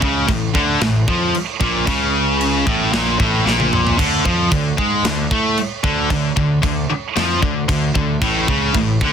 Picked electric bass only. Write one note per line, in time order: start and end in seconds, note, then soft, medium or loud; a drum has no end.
0.02 0.27 C#2 medium
0.29 0.53 A1 medium
0.55 0.79 D2 medium
0.80 1.05 A1 medium
1.07 1.32 F2 medium
1.60 1.85 A#1 medium
1.88 2.63 C#2 medium
2.67 2.91 A1 medium
2.92 3.17 A#1 medium
3.20 3.44 A1 medium
3.45 3.95 A#1 medium
3.99 4.23 D2 medium
4.26 4.50 F2 medium
4.51 4.76 D2 medium
4.78 5.02 G#2 medium
5.03 5.28 D2 medium
5.31 5.55 A2 medium
5.84 6.08 D2 medium
6.10 6.35 D2 medium
6.37 6.61 D2 medium
6.63 6.87 D2 medium
6.89 muted picked electric bass stroke soft
7.17 7.41 F2 medium
7.43 7.67 D2 medium
7.68 7.93 D2 medium
7.95 8.20 D2 medium
8.21 8.46 A1 medium
8.48 8.73 C#2 loud
8.74 8.99 A1 medium
9.01 9.13 D2 loud